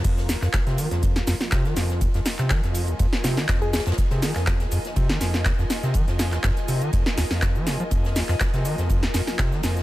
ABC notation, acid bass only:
X:1
M:4/4
L:1/16
Q:"Swing 16ths" 1/4=122
K:Fm
V:1 name="Acid bass" clef=bass
F,,2 E,, F,, z C, E, F,,2 E,, F,, z C, E, F,,2 | E,, F,, z C, E, F,,2 E,, F,, z C, E, F,,2 E,, F,, | z C, E, F,,2 E,, F,, z C, E, F,,2 E,, F,, z C, | E, F,,2 E,, F,, z C, E, F,, z E,, F,,2 F, C, F, |
F,,2 E,, F,, z C, E, F,,2 E,, F,, z C, E, F,,2 |]